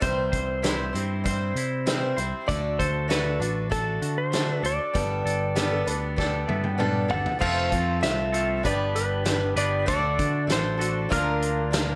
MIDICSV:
0, 0, Header, 1, 8, 480
1, 0, Start_track
1, 0, Tempo, 616016
1, 13, Time_signature, 4, 2, 24, 8
1, 9315, End_track
2, 0, Start_track
2, 0, Title_t, "Upright piano"
2, 0, Program_c, 0, 0
2, 4331, Note_on_c, 0, 67, 85
2, 4442, Note_off_c, 0, 67, 0
2, 4452, Note_on_c, 0, 69, 80
2, 4563, Note_off_c, 0, 69, 0
2, 4571, Note_on_c, 0, 71, 77
2, 4804, Note_off_c, 0, 71, 0
2, 4814, Note_on_c, 0, 74, 81
2, 5045, Note_on_c, 0, 76, 76
2, 5046, Note_off_c, 0, 74, 0
2, 5159, Note_off_c, 0, 76, 0
2, 5175, Note_on_c, 0, 79, 75
2, 5257, Note_on_c, 0, 78, 57
2, 5279, Note_off_c, 0, 79, 0
2, 5287, Note_off_c, 0, 78, 0
2, 5291, Note_on_c, 0, 79, 79
2, 5641, Note_off_c, 0, 79, 0
2, 9315, End_track
3, 0, Start_track
3, 0, Title_t, "Electric slide guitar"
3, 0, Program_c, 1, 29
3, 18, Note_on_c, 1, 72, 83
3, 943, Note_off_c, 1, 72, 0
3, 1931, Note_on_c, 1, 74, 107
3, 2175, Note_on_c, 1, 72, 105
3, 2178, Note_off_c, 1, 74, 0
3, 2419, Note_off_c, 1, 72, 0
3, 2424, Note_on_c, 1, 71, 92
3, 2894, Note_off_c, 1, 71, 0
3, 2897, Note_on_c, 1, 69, 90
3, 3257, Note_on_c, 1, 72, 91
3, 3264, Note_off_c, 1, 69, 0
3, 3529, Note_off_c, 1, 72, 0
3, 3529, Note_on_c, 1, 71, 91
3, 3624, Note_off_c, 1, 71, 0
3, 3629, Note_on_c, 1, 74, 87
3, 5270, Note_off_c, 1, 74, 0
3, 5538, Note_on_c, 1, 78, 86
3, 5771, Note_off_c, 1, 78, 0
3, 5774, Note_on_c, 1, 77, 91
3, 6223, Note_off_c, 1, 77, 0
3, 6255, Note_on_c, 1, 76, 81
3, 6747, Note_off_c, 1, 76, 0
3, 6750, Note_on_c, 1, 74, 90
3, 6977, Note_on_c, 1, 71, 87
3, 6989, Note_off_c, 1, 74, 0
3, 7459, Note_off_c, 1, 71, 0
3, 7462, Note_on_c, 1, 74, 83
3, 7691, Note_off_c, 1, 74, 0
3, 7700, Note_on_c, 1, 74, 90
3, 8193, Note_off_c, 1, 74, 0
3, 8198, Note_on_c, 1, 72, 93
3, 8670, Note_on_c, 1, 70, 95
3, 8682, Note_off_c, 1, 72, 0
3, 9315, Note_off_c, 1, 70, 0
3, 9315, End_track
4, 0, Start_track
4, 0, Title_t, "Tonewheel organ"
4, 0, Program_c, 2, 16
4, 5767, Note_on_c, 2, 65, 64
4, 5772, Note_on_c, 2, 69, 63
4, 5773, Note_on_c, 2, 72, 65
4, 5776, Note_on_c, 2, 60, 60
4, 6721, Note_off_c, 2, 65, 0
4, 6724, Note_off_c, 2, 69, 0
4, 6725, Note_off_c, 2, 72, 0
4, 6726, Note_off_c, 2, 60, 0
4, 6735, Note_on_c, 2, 67, 65
4, 6737, Note_on_c, 2, 62, 62
4, 6738, Note_on_c, 2, 71, 66
4, 6739, Note_on_c, 2, 74, 59
4, 7678, Note_off_c, 2, 74, 0
4, 7681, Note_off_c, 2, 62, 0
4, 7686, Note_off_c, 2, 67, 0
4, 7688, Note_off_c, 2, 71, 0
4, 7688, Note_on_c, 2, 74, 68
4, 7691, Note_on_c, 2, 62, 73
4, 7696, Note_on_c, 2, 69, 61
4, 7702, Note_on_c, 2, 66, 70
4, 8636, Note_off_c, 2, 62, 0
4, 8638, Note_off_c, 2, 74, 0
4, 8643, Note_on_c, 2, 70, 68
4, 8644, Note_on_c, 2, 65, 65
4, 8645, Note_on_c, 2, 62, 64
4, 8647, Note_off_c, 2, 69, 0
4, 8648, Note_on_c, 2, 74, 70
4, 8651, Note_off_c, 2, 66, 0
4, 9315, Note_off_c, 2, 62, 0
4, 9315, Note_off_c, 2, 65, 0
4, 9315, Note_off_c, 2, 70, 0
4, 9315, Note_off_c, 2, 74, 0
4, 9315, End_track
5, 0, Start_track
5, 0, Title_t, "Steel-string acoustic guitar"
5, 0, Program_c, 3, 25
5, 3, Note_on_c, 3, 48, 74
5, 7, Note_on_c, 3, 52, 73
5, 7, Note_on_c, 3, 55, 93
5, 12, Note_on_c, 3, 60, 94
5, 20, Note_on_c, 3, 64, 86
5, 21, Note_on_c, 3, 72, 88
5, 476, Note_off_c, 3, 48, 0
5, 482, Note_off_c, 3, 52, 0
5, 485, Note_off_c, 3, 55, 0
5, 486, Note_off_c, 3, 60, 0
5, 486, Note_on_c, 3, 48, 78
5, 491, Note_on_c, 3, 52, 75
5, 492, Note_off_c, 3, 64, 0
5, 493, Note_off_c, 3, 72, 0
5, 494, Note_on_c, 3, 55, 87
5, 496, Note_on_c, 3, 60, 84
5, 501, Note_on_c, 3, 64, 86
5, 502, Note_on_c, 3, 72, 74
5, 714, Note_off_c, 3, 72, 0
5, 723, Note_off_c, 3, 64, 0
5, 723, Note_on_c, 3, 72, 54
5, 729, Note_off_c, 3, 48, 0
5, 731, Note_off_c, 3, 52, 0
5, 733, Note_off_c, 3, 55, 0
5, 733, Note_on_c, 3, 64, 50
5, 734, Note_off_c, 3, 60, 0
5, 744, Note_on_c, 3, 60, 50
5, 749, Note_on_c, 3, 55, 51
5, 955, Note_off_c, 3, 55, 0
5, 965, Note_on_c, 3, 55, 70
5, 966, Note_off_c, 3, 60, 0
5, 967, Note_off_c, 3, 72, 0
5, 972, Note_off_c, 3, 64, 0
5, 975, Note_on_c, 3, 60, 72
5, 981, Note_on_c, 3, 64, 72
5, 988, Note_on_c, 3, 72, 81
5, 1447, Note_off_c, 3, 55, 0
5, 1448, Note_on_c, 3, 48, 75
5, 1451, Note_on_c, 3, 52, 82
5, 1453, Note_off_c, 3, 60, 0
5, 1456, Note_off_c, 3, 64, 0
5, 1456, Note_on_c, 3, 55, 90
5, 1459, Note_off_c, 3, 72, 0
5, 1461, Note_on_c, 3, 60, 98
5, 1465, Note_on_c, 3, 64, 96
5, 1467, Note_on_c, 3, 72, 88
5, 1679, Note_off_c, 3, 72, 0
5, 1687, Note_off_c, 3, 64, 0
5, 1688, Note_on_c, 3, 72, 58
5, 1689, Note_off_c, 3, 48, 0
5, 1691, Note_off_c, 3, 52, 0
5, 1693, Note_off_c, 3, 55, 0
5, 1695, Note_off_c, 3, 60, 0
5, 1696, Note_on_c, 3, 64, 56
5, 1706, Note_on_c, 3, 60, 54
5, 1715, Note_on_c, 3, 55, 48
5, 1921, Note_on_c, 3, 50, 75
5, 1928, Note_off_c, 3, 55, 0
5, 1929, Note_off_c, 3, 72, 0
5, 1931, Note_off_c, 3, 60, 0
5, 1931, Note_on_c, 3, 57, 76
5, 1933, Note_off_c, 3, 64, 0
5, 1934, Note_on_c, 3, 62, 85
5, 1938, Note_on_c, 3, 66, 89
5, 1944, Note_on_c, 3, 69, 87
5, 2391, Note_off_c, 3, 50, 0
5, 2400, Note_on_c, 3, 50, 77
5, 2404, Note_off_c, 3, 57, 0
5, 2406, Note_off_c, 3, 66, 0
5, 2407, Note_on_c, 3, 57, 80
5, 2410, Note_off_c, 3, 62, 0
5, 2413, Note_on_c, 3, 62, 83
5, 2415, Note_on_c, 3, 66, 90
5, 2421, Note_off_c, 3, 69, 0
5, 2424, Note_on_c, 3, 69, 86
5, 2639, Note_off_c, 3, 69, 0
5, 2645, Note_off_c, 3, 50, 0
5, 2648, Note_off_c, 3, 57, 0
5, 2648, Note_on_c, 3, 69, 51
5, 2650, Note_off_c, 3, 66, 0
5, 2651, Note_off_c, 3, 62, 0
5, 2659, Note_on_c, 3, 66, 48
5, 2671, Note_on_c, 3, 62, 47
5, 2880, Note_on_c, 3, 57, 64
5, 2882, Note_off_c, 3, 62, 0
5, 2889, Note_off_c, 3, 69, 0
5, 2890, Note_off_c, 3, 66, 0
5, 2891, Note_on_c, 3, 62, 66
5, 2899, Note_on_c, 3, 66, 74
5, 2906, Note_on_c, 3, 69, 70
5, 3365, Note_off_c, 3, 62, 0
5, 3366, Note_on_c, 3, 50, 73
5, 3369, Note_off_c, 3, 66, 0
5, 3370, Note_off_c, 3, 57, 0
5, 3373, Note_on_c, 3, 57, 78
5, 3374, Note_on_c, 3, 62, 86
5, 3379, Note_on_c, 3, 66, 82
5, 3383, Note_off_c, 3, 69, 0
5, 3386, Note_on_c, 3, 69, 90
5, 3596, Note_off_c, 3, 69, 0
5, 3605, Note_on_c, 3, 69, 48
5, 3608, Note_off_c, 3, 50, 0
5, 3611, Note_off_c, 3, 66, 0
5, 3612, Note_off_c, 3, 57, 0
5, 3612, Note_off_c, 3, 62, 0
5, 3620, Note_on_c, 3, 66, 41
5, 3634, Note_on_c, 3, 62, 39
5, 3845, Note_off_c, 3, 62, 0
5, 3846, Note_on_c, 3, 55, 81
5, 3848, Note_off_c, 3, 69, 0
5, 3852, Note_on_c, 3, 59, 74
5, 3854, Note_on_c, 3, 62, 86
5, 3855, Note_off_c, 3, 66, 0
5, 3860, Note_on_c, 3, 67, 81
5, 3866, Note_on_c, 3, 69, 95
5, 4318, Note_off_c, 3, 55, 0
5, 4322, Note_off_c, 3, 59, 0
5, 4326, Note_off_c, 3, 62, 0
5, 4328, Note_on_c, 3, 55, 85
5, 4329, Note_off_c, 3, 67, 0
5, 4331, Note_on_c, 3, 59, 94
5, 4335, Note_on_c, 3, 62, 89
5, 4336, Note_off_c, 3, 69, 0
5, 4338, Note_on_c, 3, 67, 85
5, 4346, Note_on_c, 3, 69, 109
5, 4554, Note_off_c, 3, 69, 0
5, 4563, Note_on_c, 3, 69, 57
5, 4566, Note_off_c, 3, 67, 0
5, 4569, Note_off_c, 3, 55, 0
5, 4571, Note_off_c, 3, 59, 0
5, 4573, Note_off_c, 3, 62, 0
5, 4575, Note_on_c, 3, 67, 48
5, 4587, Note_on_c, 3, 62, 47
5, 4803, Note_off_c, 3, 62, 0
5, 4803, Note_on_c, 3, 59, 78
5, 4807, Note_off_c, 3, 69, 0
5, 4812, Note_off_c, 3, 67, 0
5, 4812, Note_on_c, 3, 62, 65
5, 4821, Note_on_c, 3, 67, 84
5, 4827, Note_on_c, 3, 69, 81
5, 5276, Note_off_c, 3, 59, 0
5, 5281, Note_on_c, 3, 55, 78
5, 5284, Note_off_c, 3, 62, 0
5, 5285, Note_off_c, 3, 67, 0
5, 5285, Note_on_c, 3, 59, 89
5, 5290, Note_off_c, 3, 69, 0
5, 5293, Note_on_c, 3, 62, 88
5, 5294, Note_on_c, 3, 67, 90
5, 5299, Note_on_c, 3, 69, 93
5, 5511, Note_off_c, 3, 69, 0
5, 5520, Note_on_c, 3, 69, 60
5, 5527, Note_off_c, 3, 55, 0
5, 5529, Note_off_c, 3, 59, 0
5, 5529, Note_off_c, 3, 67, 0
5, 5533, Note_off_c, 3, 62, 0
5, 5538, Note_on_c, 3, 67, 55
5, 5547, Note_on_c, 3, 62, 48
5, 5757, Note_on_c, 3, 53, 81
5, 5764, Note_on_c, 3, 57, 82
5, 5765, Note_off_c, 3, 62, 0
5, 5766, Note_off_c, 3, 67, 0
5, 5766, Note_off_c, 3, 69, 0
5, 5768, Note_on_c, 3, 60, 78
5, 5769, Note_on_c, 3, 65, 80
5, 5777, Note_on_c, 3, 69, 91
5, 5985, Note_off_c, 3, 69, 0
5, 5994, Note_on_c, 3, 69, 57
5, 5999, Note_off_c, 3, 65, 0
5, 6005, Note_off_c, 3, 53, 0
5, 6008, Note_on_c, 3, 65, 47
5, 6009, Note_off_c, 3, 57, 0
5, 6011, Note_off_c, 3, 60, 0
5, 6019, Note_on_c, 3, 60, 37
5, 6240, Note_on_c, 3, 57, 66
5, 6244, Note_off_c, 3, 60, 0
5, 6244, Note_off_c, 3, 69, 0
5, 6251, Note_off_c, 3, 65, 0
5, 6254, Note_on_c, 3, 60, 61
5, 6262, Note_on_c, 3, 65, 64
5, 6269, Note_on_c, 3, 69, 65
5, 6480, Note_off_c, 3, 69, 0
5, 6487, Note_off_c, 3, 57, 0
5, 6490, Note_on_c, 3, 69, 52
5, 6491, Note_off_c, 3, 65, 0
5, 6494, Note_off_c, 3, 60, 0
5, 6500, Note_on_c, 3, 65, 50
5, 6513, Note_on_c, 3, 60, 40
5, 6726, Note_on_c, 3, 55, 79
5, 6731, Note_off_c, 3, 60, 0
5, 6732, Note_off_c, 3, 69, 0
5, 6734, Note_on_c, 3, 62, 82
5, 6737, Note_off_c, 3, 65, 0
5, 6740, Note_on_c, 3, 67, 93
5, 6742, Note_on_c, 3, 71, 92
5, 7191, Note_off_c, 3, 55, 0
5, 7197, Note_off_c, 3, 62, 0
5, 7200, Note_on_c, 3, 55, 58
5, 7206, Note_off_c, 3, 67, 0
5, 7207, Note_on_c, 3, 62, 62
5, 7215, Note_off_c, 3, 71, 0
5, 7215, Note_on_c, 3, 67, 59
5, 7224, Note_on_c, 3, 71, 58
5, 7682, Note_off_c, 3, 55, 0
5, 7682, Note_off_c, 3, 62, 0
5, 7682, Note_on_c, 3, 50, 83
5, 7685, Note_on_c, 3, 57, 86
5, 7691, Note_on_c, 3, 62, 87
5, 7692, Note_off_c, 3, 67, 0
5, 7695, Note_off_c, 3, 71, 0
5, 7695, Note_on_c, 3, 66, 89
5, 7698, Note_on_c, 3, 69, 84
5, 8150, Note_off_c, 3, 57, 0
5, 8160, Note_on_c, 3, 57, 62
5, 8162, Note_off_c, 3, 62, 0
5, 8169, Note_off_c, 3, 50, 0
5, 8171, Note_off_c, 3, 66, 0
5, 8171, Note_on_c, 3, 62, 68
5, 8178, Note_off_c, 3, 69, 0
5, 8180, Note_on_c, 3, 66, 70
5, 8187, Note_on_c, 3, 69, 75
5, 8387, Note_off_c, 3, 69, 0
5, 8396, Note_on_c, 3, 69, 51
5, 8405, Note_off_c, 3, 66, 0
5, 8408, Note_off_c, 3, 57, 0
5, 8414, Note_off_c, 3, 62, 0
5, 8414, Note_on_c, 3, 66, 47
5, 8427, Note_on_c, 3, 62, 47
5, 8641, Note_on_c, 3, 50, 81
5, 8642, Note_off_c, 3, 62, 0
5, 8647, Note_off_c, 3, 69, 0
5, 8649, Note_on_c, 3, 58, 92
5, 8651, Note_on_c, 3, 62, 87
5, 8653, Note_off_c, 3, 66, 0
5, 8656, Note_on_c, 3, 65, 102
5, 8662, Note_on_c, 3, 70, 91
5, 9113, Note_off_c, 3, 58, 0
5, 9122, Note_off_c, 3, 62, 0
5, 9122, Note_on_c, 3, 58, 55
5, 9129, Note_off_c, 3, 50, 0
5, 9132, Note_on_c, 3, 62, 65
5, 9137, Note_off_c, 3, 65, 0
5, 9140, Note_off_c, 3, 70, 0
5, 9145, Note_on_c, 3, 65, 68
5, 9150, Note_on_c, 3, 70, 69
5, 9315, Note_off_c, 3, 58, 0
5, 9315, Note_off_c, 3, 62, 0
5, 9315, Note_off_c, 3, 65, 0
5, 9315, Note_off_c, 3, 70, 0
5, 9315, End_track
6, 0, Start_track
6, 0, Title_t, "Clean electric guitar"
6, 0, Program_c, 4, 27
6, 250, Note_on_c, 4, 72, 77
6, 968, Note_off_c, 4, 72, 0
6, 1227, Note_on_c, 4, 64, 67
6, 1938, Note_off_c, 4, 64, 0
6, 2176, Note_on_c, 4, 69, 79
6, 2888, Note_off_c, 4, 69, 0
6, 3132, Note_on_c, 4, 66, 63
6, 3851, Note_off_c, 4, 66, 0
6, 4094, Note_on_c, 4, 69, 71
6, 4808, Note_off_c, 4, 69, 0
6, 5055, Note_on_c, 4, 59, 61
6, 5772, Note_off_c, 4, 59, 0
6, 6495, Note_on_c, 4, 57, 59
6, 6503, Note_on_c, 4, 53, 60
6, 6720, Note_off_c, 4, 57, 0
6, 6724, Note_off_c, 4, 53, 0
6, 6741, Note_on_c, 4, 59, 91
6, 7444, Note_off_c, 4, 59, 0
6, 7452, Note_on_c, 4, 71, 89
6, 7458, Note_on_c, 4, 59, 83
6, 7463, Note_on_c, 4, 62, 78
6, 7470, Note_on_c, 4, 55, 65
6, 7679, Note_off_c, 4, 71, 0
6, 7683, Note_off_c, 4, 59, 0
6, 7685, Note_off_c, 4, 62, 0
6, 7689, Note_off_c, 4, 55, 0
6, 8426, Note_on_c, 4, 50, 70
6, 8644, Note_off_c, 4, 50, 0
6, 9315, End_track
7, 0, Start_track
7, 0, Title_t, "Picked electric bass"
7, 0, Program_c, 5, 34
7, 22, Note_on_c, 5, 36, 90
7, 238, Note_off_c, 5, 36, 0
7, 258, Note_on_c, 5, 36, 97
7, 704, Note_off_c, 5, 36, 0
7, 737, Note_on_c, 5, 43, 90
7, 1182, Note_off_c, 5, 43, 0
7, 1213, Note_on_c, 5, 48, 94
7, 1660, Note_off_c, 5, 48, 0
7, 1697, Note_on_c, 5, 36, 74
7, 1805, Note_off_c, 5, 36, 0
7, 1942, Note_on_c, 5, 38, 90
7, 2157, Note_off_c, 5, 38, 0
7, 2179, Note_on_c, 5, 38, 91
7, 2623, Note_off_c, 5, 38, 0
7, 2649, Note_on_c, 5, 33, 96
7, 3098, Note_off_c, 5, 33, 0
7, 3132, Note_on_c, 5, 50, 89
7, 3580, Note_off_c, 5, 50, 0
7, 3610, Note_on_c, 5, 38, 86
7, 3720, Note_off_c, 5, 38, 0
7, 3862, Note_on_c, 5, 31, 91
7, 4078, Note_off_c, 5, 31, 0
7, 4091, Note_on_c, 5, 31, 92
7, 4540, Note_off_c, 5, 31, 0
7, 4574, Note_on_c, 5, 38, 87
7, 5022, Note_off_c, 5, 38, 0
7, 5060, Note_on_c, 5, 43, 94
7, 5505, Note_off_c, 5, 43, 0
7, 5531, Note_on_c, 5, 31, 78
7, 5642, Note_off_c, 5, 31, 0
7, 5782, Note_on_c, 5, 29, 85
7, 5999, Note_off_c, 5, 29, 0
7, 6017, Note_on_c, 5, 41, 91
7, 6237, Note_off_c, 5, 41, 0
7, 6259, Note_on_c, 5, 36, 84
7, 6705, Note_off_c, 5, 36, 0
7, 6738, Note_on_c, 5, 31, 102
7, 7426, Note_off_c, 5, 31, 0
7, 7451, Note_on_c, 5, 31, 84
7, 7674, Note_off_c, 5, 31, 0
7, 7699, Note_on_c, 5, 38, 87
7, 7919, Note_off_c, 5, 38, 0
7, 7940, Note_on_c, 5, 50, 84
7, 8160, Note_off_c, 5, 50, 0
7, 8166, Note_on_c, 5, 33, 80
7, 8620, Note_off_c, 5, 33, 0
7, 8668, Note_on_c, 5, 38, 108
7, 9315, Note_off_c, 5, 38, 0
7, 9315, End_track
8, 0, Start_track
8, 0, Title_t, "Drums"
8, 14, Note_on_c, 9, 42, 77
8, 18, Note_on_c, 9, 36, 100
8, 92, Note_off_c, 9, 42, 0
8, 96, Note_off_c, 9, 36, 0
8, 256, Note_on_c, 9, 42, 61
8, 258, Note_on_c, 9, 36, 79
8, 334, Note_off_c, 9, 42, 0
8, 336, Note_off_c, 9, 36, 0
8, 497, Note_on_c, 9, 42, 83
8, 503, Note_on_c, 9, 38, 106
8, 575, Note_off_c, 9, 42, 0
8, 581, Note_off_c, 9, 38, 0
8, 742, Note_on_c, 9, 42, 56
8, 820, Note_off_c, 9, 42, 0
8, 977, Note_on_c, 9, 42, 78
8, 980, Note_on_c, 9, 36, 87
8, 1055, Note_off_c, 9, 42, 0
8, 1058, Note_off_c, 9, 36, 0
8, 1219, Note_on_c, 9, 42, 54
8, 1297, Note_off_c, 9, 42, 0
8, 1454, Note_on_c, 9, 42, 84
8, 1461, Note_on_c, 9, 38, 105
8, 1532, Note_off_c, 9, 42, 0
8, 1539, Note_off_c, 9, 38, 0
8, 1698, Note_on_c, 9, 42, 60
8, 1776, Note_off_c, 9, 42, 0
8, 1938, Note_on_c, 9, 42, 74
8, 1939, Note_on_c, 9, 36, 97
8, 2016, Note_off_c, 9, 42, 0
8, 2017, Note_off_c, 9, 36, 0
8, 2179, Note_on_c, 9, 36, 76
8, 2182, Note_on_c, 9, 42, 56
8, 2257, Note_off_c, 9, 36, 0
8, 2260, Note_off_c, 9, 42, 0
8, 2416, Note_on_c, 9, 42, 65
8, 2422, Note_on_c, 9, 38, 96
8, 2494, Note_off_c, 9, 42, 0
8, 2500, Note_off_c, 9, 38, 0
8, 2663, Note_on_c, 9, 42, 54
8, 2740, Note_off_c, 9, 42, 0
8, 2896, Note_on_c, 9, 42, 78
8, 2897, Note_on_c, 9, 36, 84
8, 2974, Note_off_c, 9, 42, 0
8, 2975, Note_off_c, 9, 36, 0
8, 3134, Note_on_c, 9, 42, 58
8, 3212, Note_off_c, 9, 42, 0
8, 3375, Note_on_c, 9, 42, 78
8, 3381, Note_on_c, 9, 38, 105
8, 3453, Note_off_c, 9, 42, 0
8, 3459, Note_off_c, 9, 38, 0
8, 3619, Note_on_c, 9, 42, 65
8, 3697, Note_off_c, 9, 42, 0
8, 3857, Note_on_c, 9, 42, 80
8, 3858, Note_on_c, 9, 36, 103
8, 3935, Note_off_c, 9, 42, 0
8, 3936, Note_off_c, 9, 36, 0
8, 4103, Note_on_c, 9, 42, 59
8, 4181, Note_off_c, 9, 42, 0
8, 4333, Note_on_c, 9, 42, 81
8, 4340, Note_on_c, 9, 38, 94
8, 4411, Note_off_c, 9, 42, 0
8, 4418, Note_off_c, 9, 38, 0
8, 4576, Note_on_c, 9, 42, 61
8, 4654, Note_off_c, 9, 42, 0
8, 4817, Note_on_c, 9, 36, 83
8, 4825, Note_on_c, 9, 38, 56
8, 4895, Note_off_c, 9, 36, 0
8, 4903, Note_off_c, 9, 38, 0
8, 5055, Note_on_c, 9, 48, 70
8, 5133, Note_off_c, 9, 48, 0
8, 5172, Note_on_c, 9, 48, 62
8, 5250, Note_off_c, 9, 48, 0
8, 5298, Note_on_c, 9, 47, 80
8, 5376, Note_off_c, 9, 47, 0
8, 5531, Note_on_c, 9, 43, 89
8, 5609, Note_off_c, 9, 43, 0
8, 5657, Note_on_c, 9, 43, 79
8, 5735, Note_off_c, 9, 43, 0
8, 5778, Note_on_c, 9, 49, 95
8, 5779, Note_on_c, 9, 36, 92
8, 5856, Note_off_c, 9, 49, 0
8, 5857, Note_off_c, 9, 36, 0
8, 6015, Note_on_c, 9, 42, 60
8, 6018, Note_on_c, 9, 36, 80
8, 6093, Note_off_c, 9, 42, 0
8, 6096, Note_off_c, 9, 36, 0
8, 6256, Note_on_c, 9, 42, 77
8, 6263, Note_on_c, 9, 38, 98
8, 6334, Note_off_c, 9, 42, 0
8, 6341, Note_off_c, 9, 38, 0
8, 6498, Note_on_c, 9, 42, 62
8, 6576, Note_off_c, 9, 42, 0
8, 6740, Note_on_c, 9, 36, 89
8, 6740, Note_on_c, 9, 42, 89
8, 6817, Note_off_c, 9, 36, 0
8, 6817, Note_off_c, 9, 42, 0
8, 6980, Note_on_c, 9, 42, 73
8, 7057, Note_off_c, 9, 42, 0
8, 7210, Note_on_c, 9, 42, 87
8, 7217, Note_on_c, 9, 38, 108
8, 7288, Note_off_c, 9, 42, 0
8, 7295, Note_off_c, 9, 38, 0
8, 7454, Note_on_c, 9, 42, 73
8, 7531, Note_off_c, 9, 42, 0
8, 7697, Note_on_c, 9, 42, 86
8, 7700, Note_on_c, 9, 36, 107
8, 7775, Note_off_c, 9, 42, 0
8, 7778, Note_off_c, 9, 36, 0
8, 7939, Note_on_c, 9, 42, 72
8, 7941, Note_on_c, 9, 36, 81
8, 8017, Note_off_c, 9, 42, 0
8, 8019, Note_off_c, 9, 36, 0
8, 8178, Note_on_c, 9, 42, 93
8, 8185, Note_on_c, 9, 38, 94
8, 8256, Note_off_c, 9, 42, 0
8, 8263, Note_off_c, 9, 38, 0
8, 8425, Note_on_c, 9, 42, 66
8, 8503, Note_off_c, 9, 42, 0
8, 8663, Note_on_c, 9, 36, 91
8, 8666, Note_on_c, 9, 42, 96
8, 8741, Note_off_c, 9, 36, 0
8, 8744, Note_off_c, 9, 42, 0
8, 8901, Note_on_c, 9, 42, 68
8, 8979, Note_off_c, 9, 42, 0
8, 9141, Note_on_c, 9, 42, 91
8, 9147, Note_on_c, 9, 38, 116
8, 9219, Note_off_c, 9, 42, 0
8, 9225, Note_off_c, 9, 38, 0
8, 9315, End_track
0, 0, End_of_file